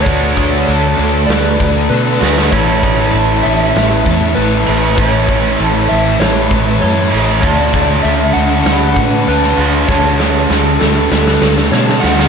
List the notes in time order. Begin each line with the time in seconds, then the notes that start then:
0.02 D3 A3 A4 C#5
0.06 D2 A3 D4 F#4, kick, open hi-hat
0.36 G#4, kick, open hi-hat
0.68 D2 A4, open hi-hat
0.97 D2 D3 A3 D4, open hi-hat
1.27 D2 B4 D5, snare, open hi-hat
1.60 D2, kick, open hi-hat
1.89 B2 D3 A3 D4 A4 B4, open hi-hat
2.20 D2 D3 A3 D4 F#4 G#4, snare
2.38 snare
2.51 A1 A2 E3 A3 C#4 A4 C#5, kick, open hi-hat
2.55 E4
2.83 G#4, kick, open hi-hat
3.13 A1 A4, open hi-hat
3.43 A1 A2 E3 A3 E5, open hi-hat
3.75 A1 B4 E5, snare, open hi-hat
4.06 E2, kick, open hi-hat
4.35 A1 A2 E3 A3 A4 B4, open hi-hat
4.67 A1 E3 A3 C#4 E4 G#4, open hi-hat
4.71 A2
4.96 A1 A2 E3 A3 A4 C#5, kick, open hi-hat
5.00 A3 C#4 E4
5.27 G#4, kick, open hi-hat
5.58 A1 A4, open hi-hat
5.89 A1 A2 E3 A3 E5, open hi-hat
6.19 A1 B4 C#5, snare, open hi-hat
6.51 A1, kick, open hi-hat
6.81 F#2 A2 E3 A3 A4 C#5, open hi-hat
7.11 A1 E3 A3 C#4 E4 G#4, open hi-hat
7.15 A2
7.40 D2 D3 A3 D4 F#4 A4 C#5, kick, open hi-hat
7.44 D4
7.51 D5
7.73 G#4, kick, open hi-hat
8.03 D2 A4 E5, open hi-hat
8.33 D2 D3 A3 D4 F#5, open hi-hat
8.62 D2 B4 F#5, snare, open hi-hat
8.94 A2 F#5, kick, open hi-hat
9.25 D2 D3 A3 D4 A4 B4, open hi-hat
9.43 snare
9.57 D2 D3 A3 D4 F#4 G#4, open hi-hat
9.87 D2 D3 A3 D4 F#4 A4 C#5, kick, snare
10.18 G#4, snare
10.48 D2 A4, snare
10.79 D2 D3 A3 D4 A4, snare
11.10 D2 B4, snare
11.27 snare
11.42 D2, snare
11.57 snare
11.71 B2 D3 A3 D4 A4 C#5, snare
11.89 snare
12.00 D2 A3 D4 F#4 G#4 F#5, snare
12.04 D3
12.19 snare